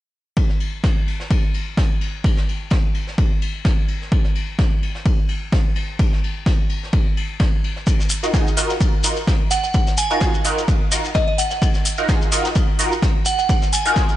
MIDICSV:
0, 0, Header, 1, 5, 480
1, 0, Start_track
1, 0, Key_signature, -6, "minor"
1, 0, Tempo, 468750
1, 377, Time_signature, 4, 2, 24, 8
1, 14506, End_track
2, 0, Start_track
2, 0, Title_t, "Synth bell"
2, 0, Program_c, 0, 98
2, 9736, Note_on_c, 0, 78, 84
2, 9821, Note_off_c, 0, 78, 0
2, 9868, Note_on_c, 0, 78, 71
2, 9938, Note_off_c, 0, 78, 0
2, 10217, Note_on_c, 0, 80, 84
2, 10301, Note_off_c, 0, 80, 0
2, 10347, Note_on_c, 0, 80, 75
2, 10417, Note_off_c, 0, 80, 0
2, 11416, Note_on_c, 0, 75, 85
2, 11501, Note_off_c, 0, 75, 0
2, 11546, Note_on_c, 0, 75, 71
2, 11617, Note_off_c, 0, 75, 0
2, 11656, Note_on_c, 0, 78, 84
2, 11741, Note_off_c, 0, 78, 0
2, 11787, Note_on_c, 0, 78, 72
2, 11857, Note_off_c, 0, 78, 0
2, 13577, Note_on_c, 0, 78, 87
2, 13661, Note_off_c, 0, 78, 0
2, 13709, Note_on_c, 0, 78, 74
2, 13778, Note_off_c, 0, 78, 0
2, 14057, Note_on_c, 0, 80, 86
2, 14141, Note_off_c, 0, 80, 0
2, 14187, Note_on_c, 0, 80, 76
2, 14257, Note_off_c, 0, 80, 0
2, 14506, End_track
3, 0, Start_track
3, 0, Title_t, "Synth stab"
3, 0, Program_c, 1, 62
3, 8428, Note_on_c, 1, 63, 83
3, 8428, Note_on_c, 1, 65, 75
3, 8428, Note_on_c, 1, 66, 72
3, 8428, Note_on_c, 1, 70, 88
3, 8520, Note_off_c, 1, 63, 0
3, 8520, Note_off_c, 1, 65, 0
3, 8520, Note_off_c, 1, 66, 0
3, 8520, Note_off_c, 1, 70, 0
3, 8538, Note_on_c, 1, 63, 84
3, 8538, Note_on_c, 1, 65, 76
3, 8538, Note_on_c, 1, 66, 77
3, 8538, Note_on_c, 1, 68, 89
3, 8737, Note_off_c, 1, 63, 0
3, 8737, Note_off_c, 1, 65, 0
3, 8737, Note_off_c, 1, 66, 0
3, 8737, Note_off_c, 1, 68, 0
3, 8776, Note_on_c, 1, 65, 85
3, 8776, Note_on_c, 1, 66, 86
3, 8777, Note_on_c, 1, 63, 94
3, 8777, Note_on_c, 1, 70, 104
3, 8977, Note_off_c, 1, 63, 0
3, 8977, Note_off_c, 1, 65, 0
3, 8977, Note_off_c, 1, 66, 0
3, 8977, Note_off_c, 1, 70, 0
3, 9257, Note_on_c, 1, 63, 78
3, 9257, Note_on_c, 1, 65, 71
3, 9257, Note_on_c, 1, 66, 69
3, 9257, Note_on_c, 1, 70, 86
3, 9391, Note_off_c, 1, 63, 0
3, 9391, Note_off_c, 1, 65, 0
3, 9391, Note_off_c, 1, 66, 0
3, 9391, Note_off_c, 1, 70, 0
3, 10349, Note_on_c, 1, 63, 81
3, 10349, Note_on_c, 1, 65, 74
3, 10349, Note_on_c, 1, 66, 73
3, 10349, Note_on_c, 1, 70, 89
3, 10441, Note_off_c, 1, 63, 0
3, 10441, Note_off_c, 1, 65, 0
3, 10441, Note_off_c, 1, 66, 0
3, 10441, Note_off_c, 1, 70, 0
3, 10457, Note_on_c, 1, 65, 75
3, 10457, Note_on_c, 1, 68, 94
3, 10458, Note_on_c, 1, 63, 78
3, 10458, Note_on_c, 1, 66, 74
3, 10657, Note_off_c, 1, 63, 0
3, 10657, Note_off_c, 1, 65, 0
3, 10657, Note_off_c, 1, 66, 0
3, 10657, Note_off_c, 1, 68, 0
3, 10698, Note_on_c, 1, 63, 94
3, 10698, Note_on_c, 1, 65, 85
3, 10698, Note_on_c, 1, 66, 82
3, 10698, Note_on_c, 1, 70, 104
3, 10897, Note_off_c, 1, 65, 0
3, 10897, Note_off_c, 1, 66, 0
3, 10898, Note_off_c, 1, 63, 0
3, 10898, Note_off_c, 1, 70, 0
3, 11177, Note_on_c, 1, 63, 78
3, 11177, Note_on_c, 1, 65, 72
3, 11177, Note_on_c, 1, 70, 83
3, 11178, Note_on_c, 1, 66, 68
3, 11311, Note_off_c, 1, 63, 0
3, 11311, Note_off_c, 1, 65, 0
3, 11311, Note_off_c, 1, 66, 0
3, 11311, Note_off_c, 1, 70, 0
3, 12269, Note_on_c, 1, 63, 84
3, 12269, Note_on_c, 1, 65, 76
3, 12269, Note_on_c, 1, 66, 72
3, 12270, Note_on_c, 1, 70, 89
3, 12361, Note_off_c, 1, 63, 0
3, 12361, Note_off_c, 1, 65, 0
3, 12361, Note_off_c, 1, 66, 0
3, 12361, Note_off_c, 1, 70, 0
3, 12377, Note_on_c, 1, 63, 83
3, 12377, Note_on_c, 1, 65, 73
3, 12377, Note_on_c, 1, 66, 75
3, 12377, Note_on_c, 1, 68, 90
3, 12577, Note_off_c, 1, 63, 0
3, 12577, Note_off_c, 1, 65, 0
3, 12577, Note_off_c, 1, 66, 0
3, 12577, Note_off_c, 1, 68, 0
3, 12616, Note_on_c, 1, 63, 92
3, 12616, Note_on_c, 1, 65, 89
3, 12616, Note_on_c, 1, 66, 83
3, 12616, Note_on_c, 1, 70, 100
3, 12816, Note_off_c, 1, 63, 0
3, 12816, Note_off_c, 1, 70, 0
3, 12817, Note_off_c, 1, 65, 0
3, 12817, Note_off_c, 1, 66, 0
3, 13096, Note_on_c, 1, 65, 73
3, 13096, Note_on_c, 1, 66, 70
3, 13097, Note_on_c, 1, 63, 80
3, 13097, Note_on_c, 1, 70, 89
3, 13230, Note_off_c, 1, 63, 0
3, 13230, Note_off_c, 1, 65, 0
3, 13230, Note_off_c, 1, 66, 0
3, 13231, Note_off_c, 1, 70, 0
3, 14188, Note_on_c, 1, 63, 79
3, 14188, Note_on_c, 1, 65, 74
3, 14188, Note_on_c, 1, 66, 78
3, 14188, Note_on_c, 1, 70, 93
3, 14280, Note_off_c, 1, 70, 0
3, 14281, Note_off_c, 1, 63, 0
3, 14281, Note_off_c, 1, 65, 0
3, 14281, Note_off_c, 1, 66, 0
3, 14297, Note_on_c, 1, 63, 80
3, 14297, Note_on_c, 1, 65, 75
3, 14297, Note_on_c, 1, 66, 76
3, 14297, Note_on_c, 1, 68, 87
3, 14497, Note_off_c, 1, 63, 0
3, 14497, Note_off_c, 1, 65, 0
3, 14497, Note_off_c, 1, 66, 0
3, 14497, Note_off_c, 1, 68, 0
3, 14506, End_track
4, 0, Start_track
4, 0, Title_t, "Shekere"
4, 8058, Note_on_c, 9, 82, 52
4, 8160, Note_off_c, 9, 82, 0
4, 8196, Note_on_c, 9, 82, 34
4, 8289, Note_off_c, 9, 82, 0
4, 8289, Note_on_c, 9, 82, 93
4, 8391, Note_off_c, 9, 82, 0
4, 8432, Note_on_c, 9, 82, 41
4, 8534, Note_off_c, 9, 82, 0
4, 8539, Note_on_c, 9, 82, 45
4, 8641, Note_off_c, 9, 82, 0
4, 8675, Note_on_c, 9, 82, 36
4, 8777, Note_off_c, 9, 82, 0
4, 8781, Note_on_c, 9, 82, 89
4, 8884, Note_off_c, 9, 82, 0
4, 8905, Note_on_c, 9, 82, 38
4, 9007, Note_off_c, 9, 82, 0
4, 9020, Note_on_c, 9, 82, 51
4, 9122, Note_off_c, 9, 82, 0
4, 9252, Note_on_c, 9, 82, 94
4, 9355, Note_off_c, 9, 82, 0
4, 9383, Note_on_c, 9, 82, 35
4, 9485, Note_off_c, 9, 82, 0
4, 9500, Note_on_c, 9, 82, 46
4, 9602, Note_off_c, 9, 82, 0
4, 9738, Note_on_c, 9, 82, 86
4, 9840, Note_off_c, 9, 82, 0
4, 9870, Note_on_c, 9, 82, 33
4, 9972, Note_off_c, 9, 82, 0
4, 9972, Note_on_c, 9, 82, 42
4, 10074, Note_off_c, 9, 82, 0
4, 10107, Note_on_c, 9, 82, 34
4, 10210, Note_off_c, 9, 82, 0
4, 10213, Note_on_c, 9, 82, 91
4, 10316, Note_off_c, 9, 82, 0
4, 10351, Note_on_c, 9, 82, 38
4, 10453, Note_off_c, 9, 82, 0
4, 10457, Note_on_c, 9, 82, 49
4, 10559, Note_off_c, 9, 82, 0
4, 10590, Note_on_c, 9, 82, 31
4, 10692, Note_off_c, 9, 82, 0
4, 10698, Note_on_c, 9, 82, 90
4, 10801, Note_off_c, 9, 82, 0
4, 10837, Note_on_c, 9, 82, 35
4, 10939, Note_off_c, 9, 82, 0
4, 10940, Note_on_c, 9, 82, 49
4, 11043, Note_off_c, 9, 82, 0
4, 11180, Note_on_c, 9, 82, 81
4, 11283, Note_off_c, 9, 82, 0
4, 11308, Note_on_c, 9, 82, 38
4, 11410, Note_off_c, 9, 82, 0
4, 11414, Note_on_c, 9, 82, 50
4, 11517, Note_off_c, 9, 82, 0
4, 11661, Note_on_c, 9, 82, 80
4, 11763, Note_off_c, 9, 82, 0
4, 11782, Note_on_c, 9, 82, 38
4, 11884, Note_off_c, 9, 82, 0
4, 11901, Note_on_c, 9, 82, 48
4, 12004, Note_off_c, 9, 82, 0
4, 12023, Note_on_c, 9, 82, 30
4, 12125, Note_off_c, 9, 82, 0
4, 12137, Note_on_c, 9, 82, 81
4, 12240, Note_off_c, 9, 82, 0
4, 12262, Note_on_c, 9, 82, 37
4, 12365, Note_off_c, 9, 82, 0
4, 12379, Note_on_c, 9, 82, 49
4, 12481, Note_off_c, 9, 82, 0
4, 12510, Note_on_c, 9, 82, 31
4, 12612, Note_off_c, 9, 82, 0
4, 12616, Note_on_c, 9, 82, 91
4, 12718, Note_off_c, 9, 82, 0
4, 12748, Note_on_c, 9, 82, 39
4, 12850, Note_off_c, 9, 82, 0
4, 12857, Note_on_c, 9, 82, 48
4, 12960, Note_off_c, 9, 82, 0
4, 13106, Note_on_c, 9, 82, 81
4, 13208, Note_off_c, 9, 82, 0
4, 13230, Note_on_c, 9, 82, 33
4, 13332, Note_off_c, 9, 82, 0
4, 13344, Note_on_c, 9, 82, 45
4, 13447, Note_off_c, 9, 82, 0
4, 13572, Note_on_c, 9, 82, 80
4, 13674, Note_off_c, 9, 82, 0
4, 13708, Note_on_c, 9, 82, 34
4, 13810, Note_off_c, 9, 82, 0
4, 13818, Note_on_c, 9, 82, 48
4, 13921, Note_off_c, 9, 82, 0
4, 13948, Note_on_c, 9, 82, 33
4, 14050, Note_off_c, 9, 82, 0
4, 14060, Note_on_c, 9, 82, 91
4, 14162, Note_off_c, 9, 82, 0
4, 14191, Note_on_c, 9, 82, 40
4, 14294, Note_off_c, 9, 82, 0
4, 14297, Note_on_c, 9, 82, 44
4, 14399, Note_off_c, 9, 82, 0
4, 14426, Note_on_c, 9, 82, 30
4, 14506, Note_off_c, 9, 82, 0
4, 14506, End_track
5, 0, Start_track
5, 0, Title_t, "Drums"
5, 376, Note_on_c, 9, 51, 71
5, 377, Note_on_c, 9, 36, 112
5, 478, Note_off_c, 9, 51, 0
5, 480, Note_off_c, 9, 36, 0
5, 504, Note_on_c, 9, 38, 35
5, 606, Note_off_c, 9, 38, 0
5, 616, Note_on_c, 9, 51, 58
5, 718, Note_off_c, 9, 51, 0
5, 857, Note_on_c, 9, 36, 113
5, 859, Note_on_c, 9, 38, 104
5, 863, Note_on_c, 9, 51, 85
5, 960, Note_off_c, 9, 36, 0
5, 962, Note_off_c, 9, 38, 0
5, 965, Note_off_c, 9, 51, 0
5, 1100, Note_on_c, 9, 51, 65
5, 1202, Note_off_c, 9, 51, 0
5, 1227, Note_on_c, 9, 38, 43
5, 1330, Note_off_c, 9, 38, 0
5, 1337, Note_on_c, 9, 36, 109
5, 1338, Note_on_c, 9, 51, 89
5, 1439, Note_off_c, 9, 36, 0
5, 1441, Note_off_c, 9, 51, 0
5, 1577, Note_on_c, 9, 51, 66
5, 1679, Note_off_c, 9, 51, 0
5, 1817, Note_on_c, 9, 36, 110
5, 1821, Note_on_c, 9, 38, 105
5, 1824, Note_on_c, 9, 51, 80
5, 1919, Note_off_c, 9, 36, 0
5, 1923, Note_off_c, 9, 38, 0
5, 1927, Note_off_c, 9, 51, 0
5, 2058, Note_on_c, 9, 51, 63
5, 2160, Note_off_c, 9, 51, 0
5, 2297, Note_on_c, 9, 36, 110
5, 2304, Note_on_c, 9, 51, 87
5, 2399, Note_off_c, 9, 36, 0
5, 2407, Note_off_c, 9, 51, 0
5, 2428, Note_on_c, 9, 38, 45
5, 2530, Note_off_c, 9, 38, 0
5, 2546, Note_on_c, 9, 51, 61
5, 2648, Note_off_c, 9, 51, 0
5, 2767, Note_on_c, 9, 51, 76
5, 2777, Note_on_c, 9, 36, 115
5, 2778, Note_on_c, 9, 38, 111
5, 2869, Note_off_c, 9, 51, 0
5, 2880, Note_off_c, 9, 36, 0
5, 2880, Note_off_c, 9, 38, 0
5, 3014, Note_on_c, 9, 51, 63
5, 3116, Note_off_c, 9, 51, 0
5, 3146, Note_on_c, 9, 38, 36
5, 3248, Note_off_c, 9, 38, 0
5, 3257, Note_on_c, 9, 36, 119
5, 3260, Note_on_c, 9, 51, 86
5, 3360, Note_off_c, 9, 36, 0
5, 3362, Note_off_c, 9, 51, 0
5, 3498, Note_on_c, 9, 51, 71
5, 3601, Note_off_c, 9, 51, 0
5, 3733, Note_on_c, 9, 38, 101
5, 3737, Note_on_c, 9, 36, 118
5, 3738, Note_on_c, 9, 51, 86
5, 3836, Note_off_c, 9, 38, 0
5, 3840, Note_off_c, 9, 36, 0
5, 3840, Note_off_c, 9, 51, 0
5, 3974, Note_on_c, 9, 51, 56
5, 4076, Note_off_c, 9, 51, 0
5, 4111, Note_on_c, 9, 38, 31
5, 4214, Note_off_c, 9, 38, 0
5, 4217, Note_on_c, 9, 36, 120
5, 4220, Note_on_c, 9, 51, 76
5, 4320, Note_off_c, 9, 36, 0
5, 4323, Note_off_c, 9, 51, 0
5, 4348, Note_on_c, 9, 38, 39
5, 4450, Note_off_c, 9, 38, 0
5, 4456, Note_on_c, 9, 51, 61
5, 4558, Note_off_c, 9, 51, 0
5, 4695, Note_on_c, 9, 51, 80
5, 4697, Note_on_c, 9, 36, 119
5, 4701, Note_on_c, 9, 38, 109
5, 4797, Note_off_c, 9, 51, 0
5, 4799, Note_off_c, 9, 36, 0
5, 4803, Note_off_c, 9, 38, 0
5, 4941, Note_on_c, 9, 51, 57
5, 5043, Note_off_c, 9, 51, 0
5, 5069, Note_on_c, 9, 38, 45
5, 5172, Note_off_c, 9, 38, 0
5, 5175, Note_on_c, 9, 51, 78
5, 5177, Note_on_c, 9, 36, 122
5, 5277, Note_off_c, 9, 51, 0
5, 5280, Note_off_c, 9, 36, 0
5, 5411, Note_on_c, 9, 51, 63
5, 5514, Note_off_c, 9, 51, 0
5, 5653, Note_on_c, 9, 51, 78
5, 5657, Note_on_c, 9, 36, 112
5, 5658, Note_on_c, 9, 38, 101
5, 5755, Note_off_c, 9, 51, 0
5, 5759, Note_off_c, 9, 36, 0
5, 5760, Note_off_c, 9, 38, 0
5, 5893, Note_on_c, 9, 51, 65
5, 5995, Note_off_c, 9, 51, 0
5, 6135, Note_on_c, 9, 51, 85
5, 6137, Note_on_c, 9, 36, 116
5, 6237, Note_off_c, 9, 51, 0
5, 6240, Note_off_c, 9, 36, 0
5, 6275, Note_on_c, 9, 38, 41
5, 6377, Note_off_c, 9, 38, 0
5, 6385, Note_on_c, 9, 51, 57
5, 6487, Note_off_c, 9, 51, 0
5, 6617, Note_on_c, 9, 36, 118
5, 6622, Note_on_c, 9, 38, 109
5, 6622, Note_on_c, 9, 51, 76
5, 6720, Note_off_c, 9, 36, 0
5, 6725, Note_off_c, 9, 38, 0
5, 6725, Note_off_c, 9, 51, 0
5, 6855, Note_on_c, 9, 51, 58
5, 6957, Note_off_c, 9, 51, 0
5, 6997, Note_on_c, 9, 38, 34
5, 7092, Note_on_c, 9, 51, 82
5, 7097, Note_on_c, 9, 36, 117
5, 7099, Note_off_c, 9, 38, 0
5, 7195, Note_off_c, 9, 51, 0
5, 7200, Note_off_c, 9, 36, 0
5, 7341, Note_on_c, 9, 51, 68
5, 7444, Note_off_c, 9, 51, 0
5, 7571, Note_on_c, 9, 51, 83
5, 7577, Note_on_c, 9, 36, 112
5, 7581, Note_on_c, 9, 38, 118
5, 7674, Note_off_c, 9, 51, 0
5, 7680, Note_off_c, 9, 36, 0
5, 7683, Note_off_c, 9, 38, 0
5, 7822, Note_on_c, 9, 51, 63
5, 7924, Note_off_c, 9, 51, 0
5, 7950, Note_on_c, 9, 38, 37
5, 8052, Note_off_c, 9, 38, 0
5, 8057, Note_on_c, 9, 36, 112
5, 8059, Note_on_c, 9, 51, 83
5, 8160, Note_off_c, 9, 36, 0
5, 8162, Note_off_c, 9, 51, 0
5, 8186, Note_on_c, 9, 38, 42
5, 8288, Note_off_c, 9, 38, 0
5, 8297, Note_on_c, 9, 46, 101
5, 8298, Note_on_c, 9, 51, 62
5, 8399, Note_off_c, 9, 46, 0
5, 8400, Note_off_c, 9, 51, 0
5, 8536, Note_on_c, 9, 51, 91
5, 8537, Note_on_c, 9, 36, 117
5, 8544, Note_on_c, 9, 38, 114
5, 8639, Note_off_c, 9, 51, 0
5, 8640, Note_off_c, 9, 36, 0
5, 8647, Note_off_c, 9, 38, 0
5, 8772, Note_on_c, 9, 51, 59
5, 8776, Note_on_c, 9, 46, 100
5, 8874, Note_off_c, 9, 51, 0
5, 8879, Note_off_c, 9, 46, 0
5, 8911, Note_on_c, 9, 38, 47
5, 9013, Note_off_c, 9, 38, 0
5, 9017, Note_on_c, 9, 36, 114
5, 9017, Note_on_c, 9, 51, 87
5, 9120, Note_off_c, 9, 36, 0
5, 9120, Note_off_c, 9, 51, 0
5, 9257, Note_on_c, 9, 46, 95
5, 9258, Note_on_c, 9, 51, 70
5, 9359, Note_off_c, 9, 46, 0
5, 9360, Note_off_c, 9, 51, 0
5, 9497, Note_on_c, 9, 36, 115
5, 9501, Note_on_c, 9, 51, 74
5, 9505, Note_on_c, 9, 38, 104
5, 9599, Note_off_c, 9, 36, 0
5, 9603, Note_off_c, 9, 51, 0
5, 9607, Note_off_c, 9, 38, 0
5, 9736, Note_on_c, 9, 46, 100
5, 9739, Note_on_c, 9, 51, 62
5, 9838, Note_off_c, 9, 46, 0
5, 9841, Note_off_c, 9, 51, 0
5, 9977, Note_on_c, 9, 36, 106
5, 9978, Note_on_c, 9, 51, 76
5, 10080, Note_off_c, 9, 36, 0
5, 10081, Note_off_c, 9, 51, 0
5, 10106, Note_on_c, 9, 38, 46
5, 10208, Note_off_c, 9, 38, 0
5, 10216, Note_on_c, 9, 46, 100
5, 10222, Note_on_c, 9, 51, 64
5, 10319, Note_off_c, 9, 46, 0
5, 10325, Note_off_c, 9, 51, 0
5, 10449, Note_on_c, 9, 38, 118
5, 10457, Note_on_c, 9, 36, 115
5, 10460, Note_on_c, 9, 51, 83
5, 10552, Note_off_c, 9, 38, 0
5, 10560, Note_off_c, 9, 36, 0
5, 10562, Note_off_c, 9, 51, 0
5, 10692, Note_on_c, 9, 51, 69
5, 10696, Note_on_c, 9, 46, 96
5, 10794, Note_off_c, 9, 51, 0
5, 10799, Note_off_c, 9, 46, 0
5, 10829, Note_on_c, 9, 38, 39
5, 10932, Note_off_c, 9, 38, 0
5, 10937, Note_on_c, 9, 36, 112
5, 10937, Note_on_c, 9, 51, 77
5, 11040, Note_off_c, 9, 36, 0
5, 11040, Note_off_c, 9, 51, 0
5, 11178, Note_on_c, 9, 46, 97
5, 11179, Note_on_c, 9, 51, 70
5, 11280, Note_off_c, 9, 46, 0
5, 11281, Note_off_c, 9, 51, 0
5, 11417, Note_on_c, 9, 36, 111
5, 11418, Note_on_c, 9, 38, 113
5, 11423, Note_on_c, 9, 51, 77
5, 11519, Note_off_c, 9, 36, 0
5, 11520, Note_off_c, 9, 38, 0
5, 11525, Note_off_c, 9, 51, 0
5, 11657, Note_on_c, 9, 46, 95
5, 11657, Note_on_c, 9, 51, 63
5, 11759, Note_off_c, 9, 46, 0
5, 11760, Note_off_c, 9, 51, 0
5, 11788, Note_on_c, 9, 38, 36
5, 11890, Note_off_c, 9, 38, 0
5, 11896, Note_on_c, 9, 51, 89
5, 11897, Note_on_c, 9, 36, 110
5, 11999, Note_off_c, 9, 51, 0
5, 12000, Note_off_c, 9, 36, 0
5, 12034, Note_on_c, 9, 38, 42
5, 12129, Note_on_c, 9, 51, 65
5, 12136, Note_off_c, 9, 38, 0
5, 12137, Note_on_c, 9, 46, 94
5, 12231, Note_off_c, 9, 51, 0
5, 12239, Note_off_c, 9, 46, 0
5, 12377, Note_on_c, 9, 36, 112
5, 12377, Note_on_c, 9, 51, 87
5, 12382, Note_on_c, 9, 38, 109
5, 12480, Note_off_c, 9, 36, 0
5, 12480, Note_off_c, 9, 51, 0
5, 12484, Note_off_c, 9, 38, 0
5, 12616, Note_on_c, 9, 46, 96
5, 12619, Note_on_c, 9, 51, 67
5, 12718, Note_off_c, 9, 46, 0
5, 12721, Note_off_c, 9, 51, 0
5, 12752, Note_on_c, 9, 38, 46
5, 12850, Note_on_c, 9, 51, 77
5, 12854, Note_off_c, 9, 38, 0
5, 12857, Note_on_c, 9, 36, 107
5, 12952, Note_off_c, 9, 51, 0
5, 12960, Note_off_c, 9, 36, 0
5, 13096, Note_on_c, 9, 46, 97
5, 13096, Note_on_c, 9, 51, 63
5, 13198, Note_off_c, 9, 46, 0
5, 13199, Note_off_c, 9, 51, 0
5, 13337, Note_on_c, 9, 36, 109
5, 13338, Note_on_c, 9, 51, 77
5, 13340, Note_on_c, 9, 38, 109
5, 13439, Note_off_c, 9, 36, 0
5, 13440, Note_off_c, 9, 51, 0
5, 13442, Note_off_c, 9, 38, 0
5, 13572, Note_on_c, 9, 51, 65
5, 13576, Note_on_c, 9, 46, 94
5, 13674, Note_off_c, 9, 51, 0
5, 13678, Note_off_c, 9, 46, 0
5, 13817, Note_on_c, 9, 36, 111
5, 13821, Note_on_c, 9, 51, 83
5, 13919, Note_off_c, 9, 36, 0
5, 13923, Note_off_c, 9, 51, 0
5, 13944, Note_on_c, 9, 38, 47
5, 14047, Note_off_c, 9, 38, 0
5, 14056, Note_on_c, 9, 46, 99
5, 14057, Note_on_c, 9, 51, 70
5, 14158, Note_off_c, 9, 46, 0
5, 14159, Note_off_c, 9, 51, 0
5, 14187, Note_on_c, 9, 46, 56
5, 14289, Note_off_c, 9, 46, 0
5, 14294, Note_on_c, 9, 51, 82
5, 14297, Note_on_c, 9, 36, 117
5, 14304, Note_on_c, 9, 38, 106
5, 14396, Note_off_c, 9, 51, 0
5, 14399, Note_off_c, 9, 36, 0
5, 14406, Note_off_c, 9, 38, 0
5, 14506, End_track
0, 0, End_of_file